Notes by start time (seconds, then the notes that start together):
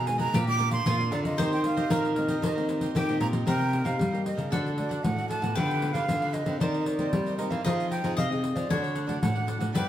Already playing: B2 G#4
0.06 D#3 G#3 D#4 G#5, muted cavaquinho stroke, pandeiro
0.18 G#4 B4 D#5 A#5, pandeiro
0.33 A#2 A#3 D4 F4 G4 A#4 D5 F5, pandeiro
0.47 A#3 D4 F4 A#4 D5 F5 D6, pandeiro
0.59 A#3 D4 F4 A#4 D5 F5, pandeiro
0.71 A#4 D5 F5 C6, pandeiro
0.86 F2 A#2 F4, pandeiro
0.98 A#3 D4 F4 A#4 D5 F5, pandeiro
1.11 D3 D4 A#4 D5 F5, pandeiro
1.23 A#4 D5 D#5 F5, pandeiro
1.37 D#3 A#3 C4 D#4 G4 C5 D#5, pandeiro
1.52 G4 C5 D#5 G5, pandeiro
1.63 A#3 C4 G4 F5, muted cavaquinho stroke, pandeiro
1.76 G4 C5 D#5, pandeiro
1.90 A#2 D#3 A#4, pandeiro
2.04 G4 C5 D#5, pandeiro
2.16 A#3 C4 G4 D#5, muted cavaquinho stroke, pandeiro
2.28 G4 C5 D#5, pandeiro
2.42 D#3 D#4 G4 C5 D#5, pandeiro
2.56 A#3 C4 G4 C5 D#5, pandeiro
2.68 D#4 G4 C5 D#5, pandeiro
2.81 G4 C5 D#5, pandeiro
2.95 A#2 D#3 G4 G5, pandeiro
3.09 A#3 C4 G4 C5 D#5, pandeiro
3.20 A#2 D#4 G4 C5 D#5 A#5, pandeiro
3.32 G4 C5 D#5, pandeiro
3.46 C3 A#3 D#4 G4 A#4 C5 D#5 G5, pandeiro
3.61 pandeiro
3.71 A#3 D#4 G4 A#4 C5 D#5, pandeiro
3.84 C3 D#4 A#4 C5 D#5 F5, pandeiro
3.99 G2 G3, pandeiro
4.11 A#3 D#4 G4 A#4 C5 D#5, pandeiro
4.26 D#5, pandeiro
4.35 C#3 A#4 C5 D#5, pandeiro
4.50 D3 A3 D4 F#4 A4 D5 F#5, pandeiro
4.66 pandeiro
4.76 A3 D4 F#4 A4 D5 F#5, pandeiro
4.89 D4 A4 D5 F#5, pandeiro
5.03 A2 F#5, pandeiro
5.17 A3 D4 F#4 A4 D5 F#5, pandeiro
5.29 D4 A4 D5 F#5 A5, pandeiro
5.42 A2 B3 F4 G4 A4 D5 F#5, pandeiro
5.55 D3 D4 G4 B4 F5 G5, pandeiro
5.71 pandeiro
5.82 B3 D4 F4 G4 B4 F5, pandeiro
5.93 D3 D4 G4 B4 F5, pandeiro
6.08 D3 B3 F4 G4, pandeiro
6.22 G4 B4 F5, pandeiro
6.33 D#5, pandeiro
6.46 D3 A#3 C4 G4 B4 F5, pandeiro
6.60 D#3 D#4 A#4 C5 D5 D#5, pandeiro
6.74 pandeiro
6.80 D#5
6.86 D#4 A#4 C5 D5 D#5, pandeiro
6.99 A#3 C4 D#4 G4 A#4 C5 D#5, pandeiro
7.13 D#3 G3, pandeiro
7.26 A#4 C5 D#5, pandeiro
7.38 A#3 C4 D#4 G4 A#4 C5 D#5, pandeiro
7.50 E3 A#4 C5 D#5 F5, pandeiro
7.64 F3 C4 D#4 G#4 C5 D#5 F5, pandeiro
7.80 pandeiro
7.90 D#4 G#4 C5 F5 G5, pandeiro
8.04 F3 C4 D#4 G#4 C5 F5, pandeiro
8.17 C3 D#5 F5, pandeiro
8.30 C4 D#4 G#4 C5 D#5 F5, pandeiro
8.44 pandeiro
8.55 F3 G#4 C5 D5 F5, pandeiro
8.69 D3 F#3 A3 D4 A4 C#5 D5 F#5, pandeiro
8.83 C#5, pandeiro
8.94 D4 A4 D5 F#5, pandeiro
9.07 F#3 A3 D4 A4 D5 F#5, pandeiro
9.21 A2 F#5, pandeiro
9.35 F#3 A3 D4 A4 D5 F#5, pandeiro
9.47 D4 A4 D5 F#5, pandeiro
9.59 A2 A4 D5 F#5, pandeiro
9.73 G2 G3 B3 D4 G4 B4 D5 G5, pandeiro